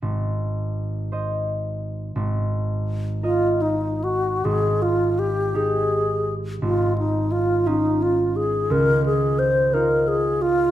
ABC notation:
X:1
M:6/8
L:1/8
Q:3/8=57
K:Ab
V:1 name="Alto flute"
z6 | z3 F E _G | A F G A3 | F E F E F A |
B A c B A F |]
V:2 name="Harp"
A,,,3 [ce]3 | A,,,3 [Be]3 | A,,,3 [EG]3 | A,,,3 [DF]3 |
D,,3 [EF]3 |]